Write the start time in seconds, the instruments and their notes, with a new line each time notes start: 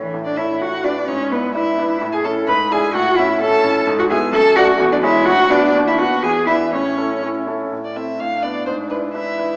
Already playing: grand piano A2 A4 C#5
0.02 cello E3
0.14 grand piano A2
0.25 cello D4, violin D5
0.37 grand piano E4 A4 C#5, cello E4, violin E5
0.61 grand piano A2, cello F#4, violin F#5
0.84 cello D4, grand piano D4 F#4 B4, violin D5
1.08 grand piano G#2, cello C#4, violin C#5
1.32 cello B3, grand piano D4 E4 B4, violin B4
1.55 grand piano D4 E4 B4, cello E4, violin E5
1.78 grand piano D4 E4 B4
2.01 grand piano A2
2.12 cello G#4, violin G#5
2.24 grand piano C#4 E4 E5, cello A4, violin A5
2.48 grand piano G#2, cello B4, violin B5
2.71 grand piano D4 E4 E5, cello G#4, violin G#5
2.94 grand piano A2, cello F#4, violin F#5
3.16 grand piano C#4 E4 E5, cello E4, violin E5
3.41 grand piano C#4 E4 E5, cello A4, violin A5
3.64 grand piano C#4 E4 E5
3.87 grand piano G#2
3.99 cello F#4, violin F#5
4.10 grand piano B3 E4 E5, cello G#4, violin G#5
4.32 grand piano F#2, cello A4, violin A5
4.56 grand piano A3 F#4 D5, cello F#4, violin F#5
4.79 grand piano E2
4.92 cello D4, violin D5
5.03 grand piano G#3 G#4 C#5, cello E4, violin E5
5.26 grand piano D2, cello F#4, violin F#5
5.50 grand piano B3 F#4 B4, cello D4, violin D5
5.75 grand piano D#2
5.87 cello E4, violin E5
5.98 grand piano B3 F#4 B4, cello F#4, violin F#5
6.23 grand piano E2, cello G#4, violin G#5
6.46 grand piano D4 E4 B4, cello E4, violin E5
6.73 grand piano A2, cello C#4, violin C#5
6.97 grand piano C#4 E4 A4
7.22 grand piano C#4 E4 A4
7.47 grand piano C#4 E4 A4
7.72 grand piano A2
7.85 violin D5
7.96 grand piano C4 E4 A4, violin E5
8.19 grand piano A2, cello D4, violin F5
8.43 grand piano B3 D4 B4, violin D5
8.66 grand piano G#2, violin C5
8.90 grand piano D4 E4 B4, violin B4
9.14 grand piano D4 E4 B4, cello E4, violin E5
9.38 grand piano D4 E4 B4